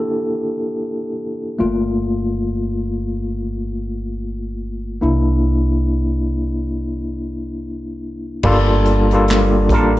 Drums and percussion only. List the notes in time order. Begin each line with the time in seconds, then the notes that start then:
8.43 kick, crash
8.85 closed hi-hat
9.11 closed hi-hat
9.28 snare, clap, closed hi-hat
9.69 kick, closed hi-hat